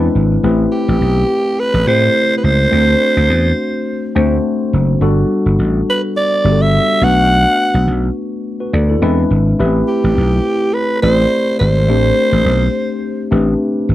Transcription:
Already playing: tine electric piano G#3 C4 D4 E4 B4
0.15 slap bass G#1
0.43 slap bass A1, tine electric piano A3 C4 E4 G4 B4
0.72 alto saxophone G4
0.88 slap bass A1
1.01 slap bass B1
1.59 alto saxophone B4
1.74 slap bass A1
1.87 slap bass A2, tine electric piano A3 C4 E4 G4 C5, alto saxophone C5
2.37 alto saxophone B4
2.44 slap bass C#2, alto saxophone C5
2.71 slap bass D2, tine electric piano A3 C4 D4 F#4 C5
3.17 slap bass D2
3.30 slap bass E2
4.15 slap bass D2, tine electric piano A3 C4 D4 F#4 C5
4.73 slap bass F#1
5.01 slap bass G1, tine electric piano G3 B3 D4 F#4 A4
5.46 slap bass G1
5.59 slap bass A1
5.89 alto saxophone B4
6.17 alto saxophone D5
6.44 slap bass G1, tine electric piano G3 B3 D4 F#4 G4
6.52 tine electric piano A4
6.62 alto saxophone E5
7.01 slap bass B1, tine electric piano A3 B3 D4 F#4 B4, alto saxophone F#5
7.74 slap bass B1
7.87 slap bass B1
8.60 tine electric piano F#4 B4
8.73 slap bass D2, tine electric piano A4 D5
8.89 tine electric piano E4 A4
9.02 slap bass E2, tine electric piano G#3 C4 D4 E4 B4
9.31 slap bass G#1
9.59 slap bass A1, tine electric piano A3 B3 E4 G4 B4
9.65 tine electric piano C4
9.88 alto saxophone G4
10.04 slap bass A1
10.17 slap bass B1
10.74 alto saxophone B4
11.02 slap bass A1, tine electric piano A3 C4 E4 G4 D5, alto saxophone C5
11.59 slap bass G#1, alto saxophone C5
11.89 slap bass A1, tine electric piano A3 C4 D4 G4 C5
12.32 slap bass A1
12.46 slap bass B1
13.31 slap bass A1, tine electric piano A3 C4 D4 G4 B4
13.89 slap bass G#1

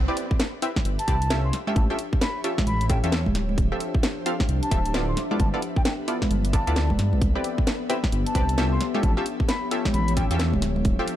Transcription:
Already playing: ambient pad D4 G4 B4 E5
0.08 synth stab C4 E4 G4 B4 D5
0.17 open hi-hat
0.31 kick
0.40 snare, closed hi-hat
0.62 synth stab C4 E4 G4 B4 E5, open hi-hat
0.76 kick, snare
0.85 detuned saw bass G1, closed hi-hat
0.99 flute A5, closed hi-hat
1.08 detuned saw bass C2, synth stab C4 E4 G4 B4 D5, kick, open hi-hat
1.22 closed hi-hat
1.30 synth stab C#4 F4 G4 A4 E5, snare, closed hi-hat
1.44 flute C6
1.53 ambient pad F3 C#5, snare, open hi-hat
1.67 synth stab C#4 F4 G4 A4 E5, high conga
1.76 detuned saw bass A1, flute A5, kick, closed hi-hat
1.90 synth stab C#4 F4 G4 A4 E5, flute A5
1.99 open hi-hat
2.13 kick
2.21 flute B5, snare, closed hi-hat
2.37 ambient pad C#5
2.44 synth stab C#4 F4 G4 A4 E5, open hi-hat
2.58 kick, snare, high conga
2.67 detuned saw bass A1, flute B5, closed hi-hat
2.81 closed hi-hat
2.90 synth stab C#4 F4 G4 A4 E5, flute G5, kick, open hi-hat
3.04 detuned saw bass E2, synth stab C#4 F4 G4 A4 E5, flute G5, closed hi-hat
3.12 snare, closed hi-hat
3.26 detuned saw bass D1, kick, high conga
3.35 ambient pad D4 C5, snare, open hi-hat
3.49 high conga
3.58 detuned saw bass D1, kick, closed hi-hat
3.72 synth stab C4 F4 G4 A4 E5
3.80 open hi-hat
3.95 ambient pad G4, kick
4.03 snare, closed hi-hat
4.19 ambient pad C5 E5
4.26 synth stab C4 F4 G4 A4 F5, open hi-hat
4.40 kick, snare
4.49 detuned saw bass C2, closed hi-hat
4.63 flute A5, closed hi-hat
4.71 detuned saw bass D1, synth stab C4 F4 G4 A4 E5, kick, open hi-hat
4.86 closed hi-hat
4.94 synth stab B3 E4 F4 A4 D5, snare, closed hi-hat
5.08 flute C6
5.17 ambient pad B3 A4 B4 E5, snare, open hi-hat
5.31 synth stab B3 E4 F4 A4 D5, high conga
5.39 detuned saw bass G1, ambient pad A4, flute A5, kick, closed hi-hat
5.54 synth stab B3 E4 F4 A4 D5, flute A5
5.62 open hi-hat
5.76 flute G5, kick
5.85 flute G5, snare, closed hi-hat
6.03 ambient pad D5
6.08 synth stab B3 E4 F4 A4 D5, open hi-hat
6.22 kick, snare, high conga
6.31 detuned saw bass G1, closed hi-hat
6.45 closed hi-hat
6.53 synth stab B3 E4 F4 A4 D5, flute A5, kick, open hi-hat
6.67 detuned saw bass D2, synth stab B3 E4 F4 A4 D5, closed hi-hat
6.76 snare, closed hi-hat
6.90 detuned saw bass F1, kick, high conga
6.99 detuned saw bass G2, snare, open hi-hat
7.13 detuned saw bass B1, high conga
7.21 detuned saw bass C2, ambient pad D4 G4 B4, kick, closed hi-hat
7.35 synth stab C4 E4 G4 B4 D5
7.44 open hi-hat
7.58 kick
7.67 snare, closed hi-hat
7.89 synth stab C4 E4 G4 B4 E5, open hi-hat
8.04 kick, snare
8.12 detuned saw bass G1, closed hi-hat
8.26 flute A5, closed hi-hat
8.35 detuned saw bass C2, synth stab C4 E4 G4 B4 D5, kick, open hi-hat
8.49 closed hi-hat
8.58 synth stab C#4 F4 G4 A4 E5, snare, closed hi-hat
8.72 flute C6
8.81 ambient pad F3 C#5, snare, open hi-hat
8.94 synth stab C#4 F4 G4 A4 E5, high conga
9.03 detuned saw bass A1, flute A5, kick, closed hi-hat
9.17 synth stab C#4 F4 G4 A4 E5, flute A5
9.26 open hi-hat
9.40 kick
9.49 flute B5, snare, closed hi-hat
9.65 ambient pad C#5
9.71 synth stab C#4 F4 G4 A4 E5, open hi-hat
9.85 kick, snare, high conga
9.94 detuned saw bass A1, flute B5, closed hi-hat
10.08 closed hi-hat
10.17 synth stab C#4 F4 G4 A4 E5, flute G5, kick, open hi-hat
10.31 detuned saw bass E2, synth stab C#4 F4 G4 A4 E5, flute G5, closed hi-hat
10.39 snare, closed hi-hat
10.53 detuned saw bass D1, kick, high conga
10.62 ambient pad D4 C5, snare, open hi-hat
10.76 high conga
10.83 detuned saw bass D1, ambient pad G4, kick, closed hi-hat
10.99 synth stab C4 F4 G4 A4 E5
11.08 open hi-hat

